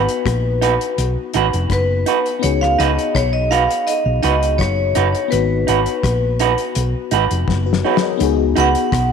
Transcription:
Already playing: B3 D#4 F#4 B4
0.09 closed hi-hat
0.26 A#1, kick, cross-stick, closed hi-hat
0.61 D#4 F#4 B4, closed hi-hat
0.81 closed hi-hat
0.98 B1, closed hi-hat
1.34 G#1 D#4 F#4 B4, closed hi-hat
1.53 F1, closed hi-hat
1.70 F#1 B4, kick, cross-stick, closed hi-hat
2.06 D#4 F#4 B4, closed hi-hat
2.26 closed hi-hat
2.39 B3 D#4 F#4 C#5, closed hi-hat
2.44 C#2 G#4
2.61 F5, cross-stick
2.78 C#2 D#4 F#4 B4 D#5, closed hi-hat
2.99 closed hi-hat
3.15 B1 C#5, kick, cross-stick, closed hi-hat
3.33 D#5
3.51 D#4 F#4 B4 F5, closed hi-hat
3.71 closed hi-hat
3.87 D#5, closed hi-hat
4.06 B1
4.23 C#2 D#4 F#4 B4 D#5, closed hi-hat
4.43 closed hi-hat
4.58 F#1 C#5, kick, cross-stick, closed hi-hat
4.95 F#1 D#4 F#4 B4, closed hi-hat
5.15 closed hi-hat
5.28 B3 D#4 F#4 B4, closed hi-hat
5.32 G#1 B4
5.67 G#1 D#4 F#4 B4, closed hi-hat
5.86 closed hi-hat
6.03 A#1, kick, cross-stick, closed hi-hat
6.39 D#4 F#4 B4, closed hi-hat
6.58 closed hi-hat
6.75 B1, closed hi-hat
7.11 G#1 D#4 F#4 B4, closed hi-hat
7.31 F1, closed hi-hat
7.48 F#1, kick, snare
7.66 F#4 B4
7.73 snare
7.85 D#4 F#4 G#4 B4 C#5
7.97 snare
8.02 A#4 D#5
8.17 C#2 B3 D#4 F#4, closed hi-hat
8.23 G#4
8.56 C#2 D#4 F#4 B4, closed hi-hat
8.60 F#5
8.75 closed hi-hat
8.92 B1, kick, cross-stick, closed hi-hat

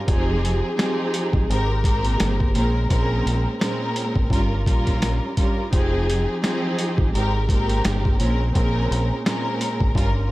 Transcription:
0.05 F1 F3 C4 D#4 G4 G#4, kick, closed hi-hat
0.45 closed hi-hat
0.77 F3 C4 D#4 G4 G#4, snare, closed hi-hat
1.14 closed hi-hat
1.33 G#1, kick
1.48 G#1 G#2 G#3 C4 G4 A#4, closed hi-hat
1.84 A#2 G#3 C4 G4 A#4, kick, closed hi-hat
2.05 closed hi-hat
2.20 G1, snare, closed hi-hat
2.40 kick
2.53 A#1 A#2 G#3 C4 C#4 A#4, closed hi-hat
2.87 A#1 A#2 G#3 C4 C#4 A#4, kick, closed hi-hat
3.26 A#1, closed hi-hat
3.59 A#2 G#3 C4 C#4 A#4, snare, closed hi-hat
3.96 closed hi-hat
4.16 G#1, kick
4.29 G1 G2 G3 C#4 F4 A#4, kick, closed hi-hat
4.66 A#1 G2 G3 C#4 F4 A#4, kick, closed hi-hat
4.87 kick, snare, closed hi-hat
5.02 snare, closed hi-hat
5.37 G2 G3 C#4 F4 A#4, kick, closed hi-hat
5.70 F1 F3 C4 D#4 G4 G#4, kick, closed hi-hat
6.10 closed hi-hat
6.42 F3 C4 D#4 G4 G#4, snare, closed hi-hat
6.79 closed hi-hat
6.98 G#1, kick
7.13 G#1 G#2 G#3 C4 G4 A#4, closed hi-hat
7.49 A#2 G#3 C4 G4 A#4, kick, closed hi-hat
7.69 closed hi-hat
7.85 G1, snare, closed hi-hat
8.05 kick
8.18 A#1 A#2 G#3 C4 C#4 A#4, closed hi-hat
8.52 A#1 A#2 G#3 C4 C#4 A#4, kick, closed hi-hat
8.91 A#1, closed hi-hat
9.24 A#2 G#3 C4 C#4 A#4, snare, closed hi-hat
9.61 closed hi-hat
9.80 G#1, kick
9.94 G1 G2 G3 C#4 F4 A#4, kick
9.98 closed hi-hat

